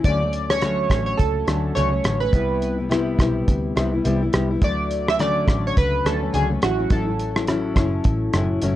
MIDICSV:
0, 0, Header, 1, 5, 480
1, 0, Start_track
1, 0, Key_signature, 2, "major"
1, 0, Tempo, 572191
1, 36, Time_signature, 4, 2, 24, 8
1, 7347, End_track
2, 0, Start_track
2, 0, Title_t, "Synth keys"
2, 0, Program_c, 0, 88
2, 40, Note_on_c, 0, 74, 98
2, 419, Note_on_c, 0, 73, 95
2, 433, Note_off_c, 0, 74, 0
2, 880, Note_off_c, 0, 73, 0
2, 890, Note_on_c, 0, 73, 82
2, 983, Note_on_c, 0, 69, 80
2, 994, Note_off_c, 0, 73, 0
2, 1469, Note_on_c, 0, 73, 88
2, 1484, Note_off_c, 0, 69, 0
2, 1848, Note_on_c, 0, 71, 74
2, 1868, Note_off_c, 0, 73, 0
2, 2300, Note_off_c, 0, 71, 0
2, 3894, Note_on_c, 0, 74, 94
2, 4275, Note_on_c, 0, 76, 94
2, 4280, Note_off_c, 0, 74, 0
2, 4315, Note_off_c, 0, 76, 0
2, 4367, Note_on_c, 0, 74, 93
2, 4718, Note_off_c, 0, 74, 0
2, 4756, Note_on_c, 0, 73, 87
2, 4837, Note_off_c, 0, 73, 0
2, 4846, Note_on_c, 0, 71, 94
2, 5082, Note_on_c, 0, 69, 77
2, 5087, Note_off_c, 0, 71, 0
2, 5323, Note_on_c, 0, 68, 84
2, 5325, Note_off_c, 0, 69, 0
2, 5429, Note_off_c, 0, 68, 0
2, 5563, Note_on_c, 0, 66, 84
2, 5806, Note_off_c, 0, 66, 0
2, 5806, Note_on_c, 0, 69, 75
2, 7206, Note_off_c, 0, 69, 0
2, 7347, End_track
3, 0, Start_track
3, 0, Title_t, "Steel-string acoustic guitar"
3, 0, Program_c, 1, 25
3, 44, Note_on_c, 1, 50, 75
3, 53, Note_on_c, 1, 54, 77
3, 61, Note_on_c, 1, 57, 74
3, 66, Note_on_c, 1, 61, 80
3, 177, Note_off_c, 1, 61, 0
3, 184, Note_off_c, 1, 50, 0
3, 187, Note_on_c, 1, 61, 47
3, 188, Note_off_c, 1, 54, 0
3, 192, Note_off_c, 1, 57, 0
3, 207, Note_on_c, 1, 57, 39
3, 219, Note_on_c, 1, 54, 34
3, 417, Note_off_c, 1, 61, 0
3, 427, Note_on_c, 1, 61, 49
3, 433, Note_off_c, 1, 57, 0
3, 439, Note_off_c, 1, 54, 0
3, 442, Note_on_c, 1, 57, 43
3, 457, Note_on_c, 1, 54, 37
3, 512, Note_off_c, 1, 54, 0
3, 515, Note_on_c, 1, 50, 82
3, 519, Note_off_c, 1, 61, 0
3, 520, Note_off_c, 1, 57, 0
3, 522, Note_on_c, 1, 54, 72
3, 530, Note_on_c, 1, 57, 81
3, 536, Note_on_c, 1, 61, 85
3, 742, Note_off_c, 1, 50, 0
3, 752, Note_on_c, 1, 50, 51
3, 759, Note_off_c, 1, 54, 0
3, 763, Note_off_c, 1, 57, 0
3, 766, Note_off_c, 1, 61, 0
3, 767, Note_on_c, 1, 54, 52
3, 777, Note_on_c, 1, 57, 66
3, 784, Note_on_c, 1, 61, 64
3, 1218, Note_off_c, 1, 50, 0
3, 1228, Note_on_c, 1, 50, 57
3, 1229, Note_off_c, 1, 54, 0
3, 1237, Note_off_c, 1, 57, 0
3, 1240, Note_on_c, 1, 54, 57
3, 1246, Note_off_c, 1, 61, 0
3, 1247, Note_on_c, 1, 57, 58
3, 1256, Note_on_c, 1, 61, 66
3, 1455, Note_off_c, 1, 50, 0
3, 1465, Note_off_c, 1, 54, 0
3, 1465, Note_on_c, 1, 50, 68
3, 1473, Note_off_c, 1, 57, 0
3, 1475, Note_off_c, 1, 61, 0
3, 1475, Note_on_c, 1, 54, 77
3, 1483, Note_on_c, 1, 57, 77
3, 1485, Note_on_c, 1, 61, 78
3, 1598, Note_off_c, 1, 61, 0
3, 1608, Note_on_c, 1, 61, 51
3, 1612, Note_off_c, 1, 57, 0
3, 1614, Note_off_c, 1, 50, 0
3, 1619, Note_off_c, 1, 54, 0
3, 1622, Note_on_c, 1, 57, 42
3, 1637, Note_on_c, 1, 54, 41
3, 1708, Note_on_c, 1, 50, 55
3, 1709, Note_off_c, 1, 54, 0
3, 1710, Note_off_c, 1, 61, 0
3, 1717, Note_off_c, 1, 57, 0
3, 1719, Note_on_c, 1, 54, 60
3, 1728, Note_on_c, 1, 57, 55
3, 1736, Note_on_c, 1, 61, 59
3, 1839, Note_off_c, 1, 61, 0
3, 1849, Note_on_c, 1, 61, 49
3, 1856, Note_off_c, 1, 50, 0
3, 1856, Note_off_c, 1, 57, 0
3, 1861, Note_off_c, 1, 54, 0
3, 1866, Note_on_c, 1, 57, 46
3, 1883, Note_on_c, 1, 54, 38
3, 1950, Note_off_c, 1, 61, 0
3, 1953, Note_on_c, 1, 48, 66
3, 1955, Note_off_c, 1, 54, 0
3, 1958, Note_on_c, 1, 55, 70
3, 1959, Note_off_c, 1, 57, 0
3, 1968, Note_on_c, 1, 59, 72
3, 1973, Note_on_c, 1, 64, 80
3, 2319, Note_off_c, 1, 64, 0
3, 2329, Note_on_c, 1, 64, 46
3, 2338, Note_off_c, 1, 48, 0
3, 2338, Note_off_c, 1, 59, 0
3, 2341, Note_off_c, 1, 55, 0
3, 2348, Note_on_c, 1, 59, 44
3, 2360, Note_on_c, 1, 55, 36
3, 2424, Note_off_c, 1, 55, 0
3, 2425, Note_on_c, 1, 48, 75
3, 2430, Note_off_c, 1, 64, 0
3, 2432, Note_off_c, 1, 59, 0
3, 2434, Note_on_c, 1, 55, 80
3, 2442, Note_on_c, 1, 59, 81
3, 2443, Note_on_c, 1, 64, 97
3, 2659, Note_off_c, 1, 48, 0
3, 2669, Note_on_c, 1, 48, 62
3, 2670, Note_off_c, 1, 55, 0
3, 2679, Note_off_c, 1, 59, 0
3, 2679, Note_off_c, 1, 64, 0
3, 2680, Note_on_c, 1, 55, 63
3, 2693, Note_on_c, 1, 59, 62
3, 2698, Note_on_c, 1, 64, 68
3, 3138, Note_off_c, 1, 48, 0
3, 3148, Note_on_c, 1, 48, 67
3, 3153, Note_off_c, 1, 55, 0
3, 3162, Note_off_c, 1, 59, 0
3, 3163, Note_on_c, 1, 55, 60
3, 3167, Note_off_c, 1, 64, 0
3, 3172, Note_on_c, 1, 59, 67
3, 3179, Note_on_c, 1, 64, 67
3, 3285, Note_off_c, 1, 64, 0
3, 3295, Note_on_c, 1, 64, 52
3, 3296, Note_off_c, 1, 48, 0
3, 3300, Note_off_c, 1, 59, 0
3, 3303, Note_off_c, 1, 55, 0
3, 3310, Note_on_c, 1, 59, 45
3, 3322, Note_on_c, 1, 55, 40
3, 3389, Note_off_c, 1, 55, 0
3, 3390, Note_on_c, 1, 48, 73
3, 3393, Note_off_c, 1, 64, 0
3, 3395, Note_off_c, 1, 59, 0
3, 3399, Note_on_c, 1, 55, 85
3, 3405, Note_on_c, 1, 59, 81
3, 3410, Note_on_c, 1, 64, 92
3, 3529, Note_off_c, 1, 64, 0
3, 3536, Note_off_c, 1, 48, 0
3, 3539, Note_on_c, 1, 64, 57
3, 3541, Note_off_c, 1, 55, 0
3, 3544, Note_off_c, 1, 59, 0
3, 3554, Note_on_c, 1, 59, 48
3, 3567, Note_on_c, 1, 55, 45
3, 3628, Note_on_c, 1, 48, 62
3, 3631, Note_off_c, 1, 55, 0
3, 3635, Note_off_c, 1, 64, 0
3, 3639, Note_off_c, 1, 59, 0
3, 3641, Note_on_c, 1, 55, 67
3, 3649, Note_on_c, 1, 59, 70
3, 3659, Note_on_c, 1, 64, 61
3, 3769, Note_off_c, 1, 64, 0
3, 3775, Note_off_c, 1, 48, 0
3, 3779, Note_on_c, 1, 64, 50
3, 3782, Note_off_c, 1, 55, 0
3, 3786, Note_off_c, 1, 59, 0
3, 3795, Note_on_c, 1, 59, 44
3, 3874, Note_on_c, 1, 50, 67
3, 3875, Note_off_c, 1, 64, 0
3, 3881, Note_on_c, 1, 54, 78
3, 3883, Note_off_c, 1, 59, 0
3, 3888, Note_on_c, 1, 57, 82
3, 4252, Note_on_c, 1, 61, 45
3, 4257, Note_off_c, 1, 57, 0
3, 4258, Note_off_c, 1, 50, 0
3, 4262, Note_off_c, 1, 54, 0
3, 4267, Note_on_c, 1, 57, 39
3, 4281, Note_on_c, 1, 54, 43
3, 4345, Note_off_c, 1, 54, 0
3, 4348, Note_on_c, 1, 50, 73
3, 4351, Note_off_c, 1, 57, 0
3, 4351, Note_off_c, 1, 61, 0
3, 4355, Note_on_c, 1, 54, 74
3, 4361, Note_on_c, 1, 57, 81
3, 4365, Note_on_c, 1, 61, 78
3, 4577, Note_off_c, 1, 50, 0
3, 4588, Note_on_c, 1, 50, 56
3, 4591, Note_off_c, 1, 54, 0
3, 4598, Note_off_c, 1, 57, 0
3, 4600, Note_off_c, 1, 61, 0
3, 4602, Note_on_c, 1, 54, 56
3, 4611, Note_on_c, 1, 57, 58
3, 4619, Note_on_c, 1, 61, 61
3, 5069, Note_off_c, 1, 50, 0
3, 5079, Note_on_c, 1, 50, 59
3, 5085, Note_off_c, 1, 54, 0
3, 5088, Note_on_c, 1, 54, 58
3, 5096, Note_off_c, 1, 57, 0
3, 5099, Note_on_c, 1, 57, 59
3, 5104, Note_off_c, 1, 61, 0
3, 5109, Note_on_c, 1, 61, 60
3, 5203, Note_off_c, 1, 61, 0
3, 5213, Note_on_c, 1, 61, 46
3, 5220, Note_off_c, 1, 57, 0
3, 5221, Note_off_c, 1, 50, 0
3, 5225, Note_off_c, 1, 54, 0
3, 5230, Note_on_c, 1, 57, 38
3, 5245, Note_on_c, 1, 54, 41
3, 5304, Note_off_c, 1, 54, 0
3, 5308, Note_on_c, 1, 50, 72
3, 5312, Note_off_c, 1, 61, 0
3, 5313, Note_off_c, 1, 57, 0
3, 5315, Note_on_c, 1, 54, 77
3, 5323, Note_on_c, 1, 57, 74
3, 5330, Note_on_c, 1, 61, 90
3, 5440, Note_off_c, 1, 61, 0
3, 5450, Note_on_c, 1, 61, 51
3, 5453, Note_off_c, 1, 57, 0
3, 5455, Note_off_c, 1, 50, 0
3, 5459, Note_off_c, 1, 54, 0
3, 5463, Note_on_c, 1, 57, 47
3, 5477, Note_on_c, 1, 54, 40
3, 5543, Note_on_c, 1, 45, 52
3, 5544, Note_off_c, 1, 54, 0
3, 5550, Note_off_c, 1, 61, 0
3, 5554, Note_on_c, 1, 54, 53
3, 5557, Note_off_c, 1, 57, 0
3, 5563, Note_on_c, 1, 61, 58
3, 5570, Note_on_c, 1, 64, 59
3, 5678, Note_off_c, 1, 64, 0
3, 5688, Note_on_c, 1, 64, 51
3, 5693, Note_off_c, 1, 45, 0
3, 5693, Note_off_c, 1, 61, 0
3, 5698, Note_off_c, 1, 54, 0
3, 5703, Note_on_c, 1, 61, 50
3, 5716, Note_on_c, 1, 54, 35
3, 5782, Note_off_c, 1, 54, 0
3, 5785, Note_on_c, 1, 45, 73
3, 5787, Note_off_c, 1, 61, 0
3, 5790, Note_off_c, 1, 64, 0
3, 5793, Note_on_c, 1, 54, 76
3, 5797, Note_on_c, 1, 61, 77
3, 5806, Note_on_c, 1, 64, 81
3, 5917, Note_off_c, 1, 64, 0
3, 5928, Note_on_c, 1, 64, 46
3, 5934, Note_off_c, 1, 45, 0
3, 5938, Note_off_c, 1, 54, 0
3, 5938, Note_off_c, 1, 61, 0
3, 5948, Note_on_c, 1, 61, 41
3, 5958, Note_on_c, 1, 54, 38
3, 6161, Note_off_c, 1, 64, 0
3, 6171, Note_on_c, 1, 64, 48
3, 6174, Note_off_c, 1, 61, 0
3, 6184, Note_on_c, 1, 61, 44
3, 6186, Note_off_c, 1, 54, 0
3, 6196, Note_on_c, 1, 54, 38
3, 6266, Note_off_c, 1, 54, 0
3, 6267, Note_on_c, 1, 45, 73
3, 6270, Note_off_c, 1, 61, 0
3, 6271, Note_off_c, 1, 64, 0
3, 6276, Note_on_c, 1, 54, 77
3, 6281, Note_on_c, 1, 61, 74
3, 6286, Note_on_c, 1, 64, 84
3, 6498, Note_off_c, 1, 45, 0
3, 6508, Note_on_c, 1, 45, 60
3, 6509, Note_off_c, 1, 54, 0
3, 6518, Note_off_c, 1, 61, 0
3, 6519, Note_on_c, 1, 54, 62
3, 6520, Note_off_c, 1, 64, 0
3, 6529, Note_on_c, 1, 61, 72
3, 6540, Note_on_c, 1, 64, 67
3, 6982, Note_off_c, 1, 45, 0
3, 6992, Note_on_c, 1, 45, 69
3, 6999, Note_off_c, 1, 54, 0
3, 7003, Note_on_c, 1, 54, 66
3, 7007, Note_off_c, 1, 64, 0
3, 7009, Note_off_c, 1, 61, 0
3, 7012, Note_on_c, 1, 61, 65
3, 7021, Note_on_c, 1, 64, 71
3, 7219, Note_off_c, 1, 45, 0
3, 7229, Note_off_c, 1, 54, 0
3, 7229, Note_on_c, 1, 45, 83
3, 7231, Note_off_c, 1, 61, 0
3, 7239, Note_on_c, 1, 54, 86
3, 7240, Note_off_c, 1, 64, 0
3, 7241, Note_on_c, 1, 61, 81
3, 7250, Note_on_c, 1, 64, 93
3, 7347, Note_off_c, 1, 45, 0
3, 7347, Note_off_c, 1, 54, 0
3, 7347, Note_off_c, 1, 61, 0
3, 7347, Note_off_c, 1, 64, 0
3, 7347, End_track
4, 0, Start_track
4, 0, Title_t, "Picked electric bass"
4, 0, Program_c, 2, 34
4, 36, Note_on_c, 2, 38, 96
4, 722, Note_off_c, 2, 38, 0
4, 753, Note_on_c, 2, 33, 81
4, 946, Note_off_c, 2, 33, 0
4, 1001, Note_on_c, 2, 37, 75
4, 1191, Note_off_c, 2, 37, 0
4, 1238, Note_on_c, 2, 38, 87
4, 1429, Note_off_c, 2, 38, 0
4, 1483, Note_on_c, 2, 37, 84
4, 1672, Note_off_c, 2, 37, 0
4, 1717, Note_on_c, 2, 33, 81
4, 1908, Note_off_c, 2, 33, 0
4, 1953, Note_on_c, 2, 36, 90
4, 2641, Note_off_c, 2, 36, 0
4, 2674, Note_on_c, 2, 35, 82
4, 2866, Note_off_c, 2, 35, 0
4, 2916, Note_on_c, 2, 38, 79
4, 3108, Note_off_c, 2, 38, 0
4, 3155, Note_on_c, 2, 36, 87
4, 3347, Note_off_c, 2, 36, 0
4, 3401, Note_on_c, 2, 36, 86
4, 3591, Note_off_c, 2, 36, 0
4, 3640, Note_on_c, 2, 36, 75
4, 3830, Note_off_c, 2, 36, 0
4, 3874, Note_on_c, 2, 38, 93
4, 4561, Note_off_c, 2, 38, 0
4, 4595, Note_on_c, 2, 33, 79
4, 4787, Note_off_c, 2, 33, 0
4, 4843, Note_on_c, 2, 37, 86
4, 5032, Note_off_c, 2, 37, 0
4, 5073, Note_on_c, 2, 38, 92
4, 5266, Note_off_c, 2, 38, 0
4, 5319, Note_on_c, 2, 37, 90
4, 5509, Note_off_c, 2, 37, 0
4, 5559, Note_on_c, 2, 33, 84
4, 5749, Note_off_c, 2, 33, 0
4, 5792, Note_on_c, 2, 33, 90
4, 6480, Note_off_c, 2, 33, 0
4, 6508, Note_on_c, 2, 30, 89
4, 6702, Note_off_c, 2, 30, 0
4, 6755, Note_on_c, 2, 33, 85
4, 6947, Note_off_c, 2, 33, 0
4, 6993, Note_on_c, 2, 30, 87
4, 7185, Note_off_c, 2, 30, 0
4, 7235, Note_on_c, 2, 30, 83
4, 7347, Note_off_c, 2, 30, 0
4, 7347, End_track
5, 0, Start_track
5, 0, Title_t, "Drums"
5, 34, Note_on_c, 9, 42, 60
5, 36, Note_on_c, 9, 36, 100
5, 118, Note_off_c, 9, 42, 0
5, 120, Note_off_c, 9, 36, 0
5, 275, Note_on_c, 9, 42, 52
5, 359, Note_off_c, 9, 42, 0
5, 420, Note_on_c, 9, 37, 83
5, 504, Note_off_c, 9, 37, 0
5, 515, Note_on_c, 9, 42, 52
5, 524, Note_on_c, 9, 37, 78
5, 599, Note_off_c, 9, 42, 0
5, 608, Note_off_c, 9, 37, 0
5, 754, Note_on_c, 9, 36, 75
5, 757, Note_on_c, 9, 42, 50
5, 763, Note_on_c, 9, 37, 76
5, 838, Note_off_c, 9, 36, 0
5, 841, Note_off_c, 9, 42, 0
5, 847, Note_off_c, 9, 37, 0
5, 999, Note_on_c, 9, 42, 55
5, 1001, Note_on_c, 9, 36, 89
5, 1083, Note_off_c, 9, 42, 0
5, 1085, Note_off_c, 9, 36, 0
5, 1237, Note_on_c, 9, 42, 48
5, 1240, Note_on_c, 9, 37, 76
5, 1321, Note_off_c, 9, 42, 0
5, 1324, Note_off_c, 9, 37, 0
5, 1482, Note_on_c, 9, 42, 72
5, 1566, Note_off_c, 9, 42, 0
5, 1712, Note_on_c, 9, 42, 55
5, 1721, Note_on_c, 9, 37, 93
5, 1796, Note_off_c, 9, 42, 0
5, 1805, Note_off_c, 9, 37, 0
5, 1954, Note_on_c, 9, 36, 109
5, 1956, Note_on_c, 9, 42, 61
5, 2038, Note_off_c, 9, 36, 0
5, 2040, Note_off_c, 9, 42, 0
5, 2198, Note_on_c, 9, 42, 54
5, 2282, Note_off_c, 9, 42, 0
5, 2441, Note_on_c, 9, 42, 54
5, 2450, Note_on_c, 9, 37, 72
5, 2525, Note_off_c, 9, 42, 0
5, 2534, Note_off_c, 9, 37, 0
5, 2674, Note_on_c, 9, 36, 77
5, 2679, Note_on_c, 9, 42, 51
5, 2684, Note_on_c, 9, 37, 75
5, 2758, Note_off_c, 9, 36, 0
5, 2762, Note_off_c, 9, 42, 0
5, 2768, Note_off_c, 9, 37, 0
5, 2917, Note_on_c, 9, 36, 82
5, 2917, Note_on_c, 9, 42, 57
5, 3001, Note_off_c, 9, 36, 0
5, 3001, Note_off_c, 9, 42, 0
5, 3159, Note_on_c, 9, 42, 49
5, 3162, Note_on_c, 9, 37, 76
5, 3242, Note_off_c, 9, 42, 0
5, 3246, Note_off_c, 9, 37, 0
5, 3397, Note_on_c, 9, 42, 72
5, 3481, Note_off_c, 9, 42, 0
5, 3631, Note_on_c, 9, 42, 55
5, 3640, Note_on_c, 9, 37, 89
5, 3715, Note_off_c, 9, 42, 0
5, 3724, Note_off_c, 9, 37, 0
5, 3874, Note_on_c, 9, 42, 60
5, 3875, Note_on_c, 9, 36, 107
5, 3957, Note_off_c, 9, 42, 0
5, 3959, Note_off_c, 9, 36, 0
5, 4116, Note_on_c, 9, 42, 54
5, 4200, Note_off_c, 9, 42, 0
5, 4266, Note_on_c, 9, 37, 82
5, 4350, Note_off_c, 9, 37, 0
5, 4356, Note_on_c, 9, 42, 52
5, 4365, Note_on_c, 9, 37, 72
5, 4440, Note_off_c, 9, 42, 0
5, 4449, Note_off_c, 9, 37, 0
5, 4594, Note_on_c, 9, 36, 82
5, 4595, Note_on_c, 9, 42, 52
5, 4600, Note_on_c, 9, 37, 77
5, 4678, Note_off_c, 9, 36, 0
5, 4679, Note_off_c, 9, 42, 0
5, 4684, Note_off_c, 9, 37, 0
5, 4839, Note_on_c, 9, 42, 56
5, 4840, Note_on_c, 9, 36, 89
5, 4923, Note_off_c, 9, 42, 0
5, 4924, Note_off_c, 9, 36, 0
5, 5082, Note_on_c, 9, 42, 49
5, 5085, Note_on_c, 9, 37, 70
5, 5166, Note_off_c, 9, 42, 0
5, 5169, Note_off_c, 9, 37, 0
5, 5317, Note_on_c, 9, 42, 71
5, 5401, Note_off_c, 9, 42, 0
5, 5552, Note_on_c, 9, 42, 56
5, 5561, Note_on_c, 9, 37, 86
5, 5636, Note_off_c, 9, 42, 0
5, 5645, Note_off_c, 9, 37, 0
5, 5789, Note_on_c, 9, 42, 58
5, 5792, Note_on_c, 9, 36, 106
5, 5873, Note_off_c, 9, 42, 0
5, 5876, Note_off_c, 9, 36, 0
5, 6035, Note_on_c, 9, 42, 54
5, 6119, Note_off_c, 9, 42, 0
5, 6176, Note_on_c, 9, 37, 84
5, 6259, Note_off_c, 9, 37, 0
5, 6270, Note_on_c, 9, 42, 54
5, 6279, Note_on_c, 9, 37, 75
5, 6354, Note_off_c, 9, 42, 0
5, 6363, Note_off_c, 9, 37, 0
5, 6510, Note_on_c, 9, 36, 82
5, 6510, Note_on_c, 9, 42, 53
5, 6516, Note_on_c, 9, 37, 78
5, 6594, Note_off_c, 9, 36, 0
5, 6594, Note_off_c, 9, 42, 0
5, 6600, Note_off_c, 9, 37, 0
5, 6746, Note_on_c, 9, 42, 58
5, 6754, Note_on_c, 9, 36, 88
5, 6830, Note_off_c, 9, 42, 0
5, 6838, Note_off_c, 9, 36, 0
5, 6990, Note_on_c, 9, 42, 49
5, 6993, Note_on_c, 9, 37, 75
5, 7074, Note_off_c, 9, 42, 0
5, 7077, Note_off_c, 9, 37, 0
5, 7227, Note_on_c, 9, 42, 68
5, 7311, Note_off_c, 9, 42, 0
5, 7347, End_track
0, 0, End_of_file